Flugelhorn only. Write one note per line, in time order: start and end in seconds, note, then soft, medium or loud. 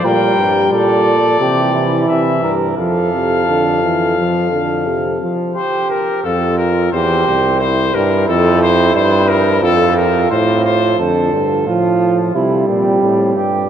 0.05 0.72 A#4 medium
0.73 1.39 A4 medium
1.41 1.74 G4 medium
1.74 2.42 E4 medium
2.44 2.77 A#4 medium
2.78 5.18 A4 medium
5.56 6.27 G4 medium
6.25 6.93 F4 medium
6.94 7.60 G4 medium
7.61 9.59 E4 medium
9.62 10.29 F4 medium
10.31 10.98 F4 medium
10.99 11.63 A4 medium
11.67 12.18 F4 medium
12.35 12.68 E4 medium
12.68 13.35 C4 medium
13.36 13.70 G4 medium